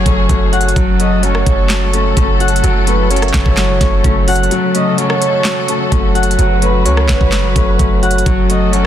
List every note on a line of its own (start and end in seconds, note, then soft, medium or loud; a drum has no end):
0.00 0.72 C#3 medium
0.00 0.75 F#3 medium
0.00 0.76 F#3 medium
0.00 0.06 A3 medium
0.00 8.22 A3 medium
0.00 0.53 C#4 medium
0.00 0.52 F#4 medium
0.00 2.60 F#4 medium
0.00 0.74 G#4 medium
0.00 0.72 C#5 medium
0.00 0.26 F#5 medium
0.06 0.28 F#1 loud
0.06 0.28 A3 medium
0.06 0.29 C#4 medium
0.06 kick loud
0.06 closed hi-hat medium
0.29 0.74 F#1 loud
0.29 0.76 A3 loud
0.29 0.99 C#4 medium
0.29 kick medium
0.29 closed hi-hat medium
0.52 0.76 F#4 medium
0.52 2.13 F#5 medium
0.52 closed hi-hat soft
0.61 closed hi-hat medium
0.68 closed hi-hat medium
0.76 1.44 F#1 loud
0.76 8.22 C#3 medium
0.76 1.93 F#3 loud
0.76 1.22 F#3 loud
0.76 4.48 A4 medium
0.76 kick loud
0.76 closed hi-hat medium
0.99 1.92 A3 medium
0.99 1.93 C#4 medium
0.99 1.22 D#5 medium
0.99 closed hi-hat medium
1.23 1.68 F#3 medium
1.23 2.40 C#4 medium
1.23 2.13 C#5 loud
1.23 closed hi-hat medium
1.35 cross-stick loud
1.46 2.14 F#1 loud
1.46 kick loud
1.46 closed hi-hat medium
1.69 2.62 F#3 medium
1.69 snare loud
1.69 clap loud
1.69 closed hi-hat medium
1.93 2.15 A3 medium
1.93 2.16 C#4 medium
1.93 closed hi-hat medium
2.17 2.62 F#1 loud
2.17 2.86 A3 loud
2.17 2.86 C#4 medium
2.17 kick medium
2.17 closed hi-hat medium
2.40 3.57 F#4 medium
2.40 4.01 F#5 medium
2.40 closed hi-hat soft
2.48 closed hi-hat medium
2.56 closed hi-hat medium
2.64 3.31 F#1 loud
2.64 3.10 F#3 loud
2.64 3.81 F#3 medium
2.64 4.49 E4 medium
2.64 closed hi-hat medium
2.87 3.79 A3 medium
2.87 3.80 C#4 medium
2.87 3.09 B4 medium
2.87 closed hi-hat medium
3.11 3.56 F#3 medium
3.11 4.28 C#4 medium
3.11 4.47 C#5 loud
3.11 closed hi-hat medium
3.16 closed hi-hat medium
3.22 cross-stick loud
3.22 closed hi-hat medium
3.28 closed hi-hat soft
3.34 3.45 F#1 loud
3.34 kick loud
3.34 snare loud
3.34 clap medium
3.34 closed hi-hat medium
3.46 3.79 F#1 loud
3.46 kick loud
3.57 4.50 F#3 medium
3.57 snare loud
3.57 clap loud
3.57 closed hi-hat medium
3.81 4.03 F#1 loud
3.81 4.03 A3 medium
3.81 4.04 C#4 medium
3.81 kick loud
3.81 snare medium
3.81 closed hi-hat medium
4.04 4.49 F#1 loud
4.04 4.51 A3 medium
4.04 4.74 C#4 medium
4.04 kick medium
4.04 closed hi-hat medium
4.28 4.51 F#4 medium
4.28 5.89 F#5 medium
4.28 closed hi-hat medium
4.28 open hi-hat medium
4.36 closed hi-hat medium
4.43 closed hi-hat soft
4.51 4.97 F#3 medium
4.51 5.69 F#3 loud
4.51 8.22 F#4 medium
4.51 6.37 A4 medium
4.51 closed hi-hat medium
4.74 5.67 A3 medium
4.74 5.68 C#4 medium
4.74 4.97 D#5 medium
4.74 closed hi-hat medium
4.98 5.43 F#3 medium
4.98 6.15 C#4 medium
4.98 5.88 C#5 loud
4.98 closed hi-hat medium
5.10 cross-stick loud
5.22 closed hi-hat medium
5.44 6.38 F#3 medium
5.44 snare loud
5.44 clap loud
5.44 closed hi-hat medium
5.68 5.90 A3 medium
5.68 5.91 C#4 medium
5.68 closed hi-hat medium
5.92 6.37 F#1 loud
5.92 6.61 A3 loud
5.92 6.62 C#4 medium
5.92 kick medium
5.92 closed hi-hat medium
6.15 7.33 F#4 medium
6.15 7.76 F#5 medium
6.15 closed hi-hat soft
6.23 closed hi-hat medium
6.31 closed hi-hat medium
6.39 6.87 F#1 loud
6.39 7.56 F#3 medium
6.39 6.84 F#3 medium
6.39 8.24 B4 medium
6.39 closed hi-hat medium
6.62 7.54 A3 medium
6.62 7.56 C#4 medium
6.62 6.85 B4 loud
6.62 closed hi-hat medium
6.85 7.08 C#2 loud
6.85 7.31 F#3 medium
6.85 8.03 C#4 medium
6.85 8.22 C#5 medium
6.85 closed hi-hat medium
6.97 cross-stick loud
7.09 7.20 F#1 loud
7.09 kick loud
7.09 snare loud
7.09 clap medium
7.09 closed hi-hat medium
7.21 7.55 F#1 loud
7.21 kick loud
7.32 8.25 F#3 medium
7.32 snare loud
7.32 clap loud
7.32 closed hi-hat medium
7.56 7.78 F#1 loud
7.56 7.78 A3 medium
7.56 7.79 C#4 medium
7.56 kick loud
7.56 closed hi-hat medium
7.79 8.24 F#1 loud
7.79 8.26 A3 medium
7.79 8.49 C#4 medium
7.79 kick medium
7.79 closed hi-hat medium
8.03 8.26 F#4 medium
8.03 8.87 F#5 medium
8.03 closed hi-hat soft
8.11 closed hi-hat medium
8.18 closed hi-hat medium
8.26 8.87 F#1 loud
8.26 8.87 C#3 medium
8.26 8.87 F#3 medium
8.26 8.72 F#3 loud
8.26 8.87 A3 medium
8.26 8.87 F#4 medium
8.26 8.87 A4 medium
8.26 kick loud
8.26 closed hi-hat medium
8.49 8.87 A3 medium
8.49 8.87 C#4 medium
8.49 8.72 D#5 medium
8.49 closed hi-hat medium
8.73 8.87 F#3 medium
8.73 8.87 C#4 medium
8.73 8.87 C#5 medium
8.73 closed hi-hat medium